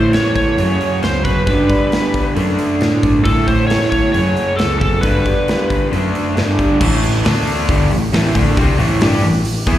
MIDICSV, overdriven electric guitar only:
0, 0, Header, 1, 2, 480
1, 0, Start_track
1, 0, Tempo, 443787
1, 1591, Time_signature, 4, 2, 24, 8
1, 10582, End_track
2, 0, Start_track
2, 0, Title_t, "Overdriven electric guitar"
2, 0, Program_c, 0, 29
2, 0, Note_on_c, 0, 45, 78
2, 0, Note_on_c, 0, 52, 82
2, 0, Note_on_c, 0, 57, 94
2, 605, Note_off_c, 0, 45, 0
2, 616, Note_on_c, 0, 42, 80
2, 618, Note_off_c, 0, 52, 0
2, 623, Note_off_c, 0, 57, 0
2, 633, Note_on_c, 0, 49, 86
2, 653, Note_on_c, 0, 54, 92
2, 1572, Note_off_c, 0, 42, 0
2, 1580, Note_off_c, 0, 49, 0
2, 1581, Note_on_c, 0, 43, 77
2, 1591, Note_off_c, 0, 54, 0
2, 1603, Note_on_c, 0, 50, 82
2, 1616, Note_on_c, 0, 55, 91
2, 2529, Note_off_c, 0, 50, 0
2, 2537, Note_off_c, 0, 43, 0
2, 2542, Note_on_c, 0, 50, 72
2, 2553, Note_off_c, 0, 55, 0
2, 2557, Note_on_c, 0, 57, 89
2, 2577, Note_on_c, 0, 62, 91
2, 3496, Note_off_c, 0, 50, 0
2, 3500, Note_on_c, 0, 45, 69
2, 3506, Note_off_c, 0, 57, 0
2, 3516, Note_off_c, 0, 62, 0
2, 3519, Note_on_c, 0, 52, 79
2, 3541, Note_on_c, 0, 57, 90
2, 4458, Note_off_c, 0, 45, 0
2, 4468, Note_off_c, 0, 52, 0
2, 4471, Note_on_c, 0, 42, 88
2, 4479, Note_off_c, 0, 57, 0
2, 4492, Note_on_c, 0, 49, 92
2, 4510, Note_on_c, 0, 54, 86
2, 5424, Note_off_c, 0, 42, 0
2, 5435, Note_off_c, 0, 49, 0
2, 5437, Note_on_c, 0, 43, 84
2, 5443, Note_off_c, 0, 54, 0
2, 5457, Note_on_c, 0, 50, 78
2, 5479, Note_on_c, 0, 55, 87
2, 6383, Note_off_c, 0, 50, 0
2, 6386, Note_off_c, 0, 43, 0
2, 6396, Note_on_c, 0, 50, 81
2, 6407, Note_off_c, 0, 55, 0
2, 6422, Note_on_c, 0, 57, 92
2, 6438, Note_on_c, 0, 62, 86
2, 6865, Note_off_c, 0, 50, 0
2, 6868, Note_on_c, 0, 43, 100
2, 6878, Note_off_c, 0, 57, 0
2, 6886, Note_off_c, 0, 62, 0
2, 6890, Note_on_c, 0, 50, 83
2, 6905, Note_on_c, 0, 55, 108
2, 7340, Note_off_c, 0, 43, 0
2, 7349, Note_off_c, 0, 50, 0
2, 7353, Note_on_c, 0, 45, 90
2, 7358, Note_off_c, 0, 55, 0
2, 7362, Note_on_c, 0, 52, 95
2, 7370, Note_on_c, 0, 57, 90
2, 7828, Note_off_c, 0, 45, 0
2, 7828, Note_off_c, 0, 57, 0
2, 7832, Note_on_c, 0, 50, 71
2, 7833, Note_off_c, 0, 52, 0
2, 7841, Note_on_c, 0, 57, 84
2, 7849, Note_on_c, 0, 62, 97
2, 8306, Note_off_c, 0, 50, 0
2, 8311, Note_off_c, 0, 57, 0
2, 8313, Note_on_c, 0, 43, 85
2, 8315, Note_off_c, 0, 62, 0
2, 8325, Note_on_c, 0, 50, 89
2, 8332, Note_on_c, 0, 55, 100
2, 8546, Note_off_c, 0, 43, 0
2, 8553, Note_off_c, 0, 50, 0
2, 8556, Note_off_c, 0, 55, 0
2, 8558, Note_on_c, 0, 45, 76
2, 8563, Note_on_c, 0, 52, 69
2, 8748, Note_off_c, 0, 45, 0
2, 8750, Note_off_c, 0, 52, 0
2, 8792, Note_on_c, 0, 45, 112
2, 8802, Note_on_c, 0, 52, 97
2, 8809, Note_on_c, 0, 57, 117
2, 9025, Note_off_c, 0, 45, 0
2, 9030, Note_off_c, 0, 52, 0
2, 9030, Note_off_c, 0, 57, 0
2, 9038, Note_on_c, 0, 50, 94
2, 9043, Note_on_c, 0, 57, 93
2, 9048, Note_on_c, 0, 62, 91
2, 9266, Note_off_c, 0, 50, 0
2, 9269, Note_off_c, 0, 57, 0
2, 9272, Note_off_c, 0, 62, 0
2, 9276, Note_on_c, 0, 48, 87
2, 9282, Note_on_c, 0, 55, 107
2, 9287, Note_on_c, 0, 60, 107
2, 9502, Note_off_c, 0, 48, 0
2, 9507, Note_on_c, 0, 45, 94
2, 9508, Note_off_c, 0, 55, 0
2, 9510, Note_off_c, 0, 60, 0
2, 9512, Note_on_c, 0, 52, 88
2, 9521, Note_on_c, 0, 57, 96
2, 9739, Note_off_c, 0, 45, 0
2, 9742, Note_off_c, 0, 52, 0
2, 9746, Note_off_c, 0, 57, 0
2, 9746, Note_on_c, 0, 55, 89
2, 9751, Note_on_c, 0, 62, 93
2, 9761, Note_on_c, 0, 67, 85
2, 9978, Note_off_c, 0, 55, 0
2, 9980, Note_off_c, 0, 62, 0
2, 9984, Note_on_c, 0, 45, 68
2, 9985, Note_off_c, 0, 67, 0
2, 9985, Note_on_c, 0, 52, 64
2, 10175, Note_off_c, 0, 45, 0
2, 10176, Note_off_c, 0, 52, 0
2, 10458, Note_on_c, 0, 52, 100
2, 10463, Note_on_c, 0, 59, 90
2, 10471, Note_on_c, 0, 64, 101
2, 10582, Note_off_c, 0, 52, 0
2, 10582, Note_off_c, 0, 59, 0
2, 10582, Note_off_c, 0, 64, 0
2, 10582, End_track
0, 0, End_of_file